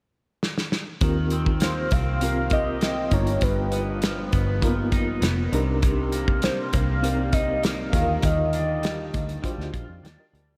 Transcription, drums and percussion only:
0.43 snare
0.58 snare
0.72 snare
1.01 kick, closed hi-hat
1.30 closed hi-hat
1.46 kick
1.60 snare, closed hi-hat
1.91 kick, closed hi-hat
2.21 closed hi-hat
2.50 kick, closed hi-hat
2.81 snare, closed hi-hat
3.11 kick, closed hi-hat
3.27 closed hi-hat
3.41 kick, closed hi-hat
3.72 closed hi-hat
4.02 snare, closed hi-hat
4.32 kick, closed hi-hat
4.62 kick, closed hi-hat
4.92 kick, closed hi-hat
5.22 snare, closed hi-hat
5.53 closed hi-hat
5.82 kick, closed hi-hat
6.12 closed hi-hat
6.28 kick
6.42 snare, closed hi-hat
6.73 kick, closed hi-hat
7.04 closed hi-hat
7.33 kick, closed hi-hat
7.63 snare, closed hi-hat
7.93 kick, closed hi-hat
8.22 kick, closed hi-hat
8.53 closed hi-hat
8.83 snare, closed hi-hat
9.14 kick, closed hi-hat
9.29 closed hi-hat
9.44 kick, closed hi-hat
9.60 snare
9.74 kick, closed hi-hat
10.05 snare, closed hi-hat
10.35 closed hi-hat

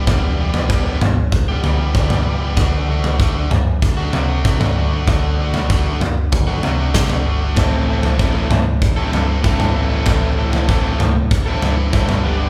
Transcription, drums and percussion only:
0.07 kick, floor tom
0.54 floor tom
0.70 kick
1.01 floor tom, mid tom
1.32 kick
1.64 floor tom
1.95 kick
2.10 floor tom, mid tom
2.57 kick, floor tom
3.04 floor tom
3.20 kick
3.51 floor tom, mid tom
3.82 kick
4.13 floor tom
4.45 kick
4.61 floor tom, mid tom
5.08 kick, floor tom
5.54 floor tom
5.70 kick
6.01 floor tom
6.32 kick, mid tom
6.63 floor tom
6.94 kick, snare
7.10 floor tom
7.57 kick, floor tom
8.03 floor tom
8.19 kick
8.51 floor tom, mid tom
8.82 kick
9.13 floor tom
9.44 kick
9.60 floor tom, mid tom
10.06 kick, floor tom
10.53 floor tom
10.69 kick
11.00 floor tom, mid tom
11.31 kick
11.62 floor tom
11.93 kick
12.09 floor tom, mid tom

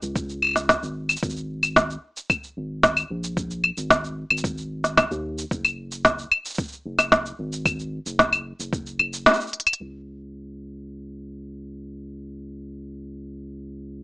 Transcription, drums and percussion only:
0.02 cabasa
0.16 kick, cabasa
0.29 cabasa
0.42 claves
0.44 claves
0.47 claves
0.49 claves
0.51 claves
0.53 snare, cabasa, claves
0.69 kick, snare, cabasa
0.83 cabasa
1.09 cabasa, claves
1.16 cabasa
1.23 kick, cabasa
1.30 cabasa
1.36 cabasa
1.63 cabasa, claves
1.76 kick, snare, cabasa
1.90 cabasa
2.17 cabasa
2.30 kick, cabasa, claves
2.44 cabasa
2.83 kick, snare, cabasa
2.97 cabasa, claves
3.24 cabasa
3.37 kick, cabasa
3.51 cabasa
3.64 claves
3.77 cabasa
3.90 kick, snare, cabasa
4.04 cabasa
4.30 claves
4.38 cabasa
4.44 kick, cabasa
4.58 cabasa
4.84 snare, cabasa
4.97 kick, snare, cabasa, claves
5.11 cabasa
5.38 cabasa
5.51 kick, cabasa
5.65 cabasa, claves
5.92 cabasa
6.05 kick, snare, cabasa
6.19 cabasa
6.32 claves
6.45 cabasa
6.50 cabasa
6.54 kick, cabasa
6.59 cabasa
6.63 cabasa
6.68 cabasa
6.72 cabasa
6.99 snare, cabasa, claves
7.12 kick, snare, cabasa
7.26 cabasa
7.53 cabasa
7.66 kick, cabasa, claves
7.79 cabasa
8.06 cabasa
8.19 kick, snare, cabasa
8.33 cabasa, claves
8.60 cabasa
8.73 kick, cabasa
8.87 cabasa
8.99 claves
9.13 cabasa
9.26 snare, cabasa
9.34 cabasa
9.40 cabasa
9.47 cabasa
9.53 closed hi-hat
9.60 closed hi-hat
9.67 closed hi-hat, claves
9.73 closed hi-hat

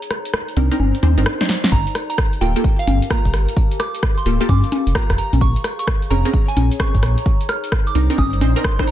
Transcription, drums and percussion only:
0.02 closed hi-hat
0.11 cross-stick, closed hi-hat
0.25 closed hi-hat
0.34 cross-stick
0.48 closed hi-hat
0.57 closed hi-hat
0.72 closed hi-hat
0.80 high conga
0.95 closed hi-hat
1.03 closed hi-hat, high conga
1.18 closed hi-hat
1.26 cross-stick
1.41 snare, closed hi-hat
1.49 snare, closed hi-hat
1.64 snare, closed hi-hat, high conga
1.72 kick, tambourine
1.87 closed hi-hat, tambourine
1.95 cross-stick, closed hi-hat, tambourine
2.10 closed hi-hat, tambourine
2.18 kick, cross-stick, tambourine
2.33 closed hi-hat, tambourine
2.41 closed hi-hat, tambourine
2.56 closed hi-hat, tambourine
2.64 kick, tambourine
2.79 closed hi-hat, tambourine
2.87 closed hi-hat, tambourine, high conga
3.02 closed hi-hat, tambourine
3.10 kick, cross-stick, tambourine
3.25 kick, closed hi-hat, tambourine
3.34 cross-stick, closed hi-hat, tambourine
3.48 closed hi-hat, tambourine
3.57 kick, tambourine
3.71 closed hi-hat, tambourine
3.80 cross-stick, closed hi-hat, tambourine
3.95 closed hi-hat, tambourine
4.03 kick, cross-stick, tambourine
4.18 closed hi-hat, tambourine
4.26 closed hi-hat, tambourine
4.41 closed hi-hat, tambourine
4.49 kick, tambourine, high conga
4.64 closed hi-hat, tambourine
4.72 closed hi-hat, tambourine, high conga
4.87 closed hi-hat, tambourine
4.95 kick, cross-stick, tambourine
5.10 kick, cross-stick, closed hi-hat, tambourine
5.18 closed hi-hat, tambourine
5.33 closed hi-hat, tambourine, high conga
5.41 kick, tambourine
5.56 closed hi-hat, tambourine
5.64 cross-stick, closed hi-hat, tambourine
5.79 closed hi-hat, tambourine
5.87 kick, cross-stick, tambourine
6.02 closed hi-hat, tambourine
6.11 closed hi-hat, tambourine
6.25 closed hi-hat, tambourine
6.33 kick, tambourine
6.49 closed hi-hat, tambourine
6.57 closed hi-hat, tambourine, high conga
6.72 closed hi-hat, tambourine
6.80 kick, cross-stick, tambourine
6.94 kick, closed hi-hat, tambourine
7.03 cross-stick, closed hi-hat, tambourine
7.18 closed hi-hat, tambourine
7.26 kick, tambourine
7.41 closed hi-hat, tambourine
7.49 cross-stick, closed hi-hat, tambourine
7.64 closed hi-hat, tambourine
7.72 kick, cross-stick, tambourine
7.87 closed hi-hat, tambourine
7.95 closed hi-hat, tambourine
8.10 closed hi-hat, tambourine
8.18 kick, tambourine, high conga
8.33 closed hi-hat, tambourine
8.41 closed hi-hat, tambourine, high conga
8.56 closed hi-hat, tambourine
8.64 kick, cross-stick, tambourine
8.79 kick, cross-stick, closed hi-hat, tambourine
8.87 closed hi-hat, tambourine

